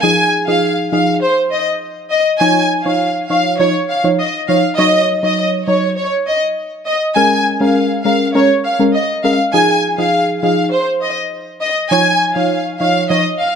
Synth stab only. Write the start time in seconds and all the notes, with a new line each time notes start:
0.03 F3 D#4 G#4
0.48 F3 D#4 G#4
0.92 F3 D#4 G#4
2.41 F3 D#4 C#5
2.85 F3 D#4 C#5
3.30 F3 D#4 C#5
3.59 F3 D#4 C#5
4.04 F3 D#4 C#5
4.49 F3 D#4 C#5
4.78 F#3 D#4 C#5
5.23 F#3 D#4 C#5
5.67 F#3 D#4 C#5
7.16 G#3 C#4 A#4
7.60 G#3 C#4 A#4
8.05 G#3 C#4 A#4
8.35 G#3 C#4 A#4
8.79 G#3 C#4 A#4
9.24 G#3 C#4 A#4
9.53 F3 D#4 G#4
9.98 F3 D#4 G#4
10.43 F3 D#4 G#4
11.91 F3 D#4 C#5
12.36 F3 D#4 C#5
12.80 F3 D#4 C#5
13.10 F3 D#4 C#5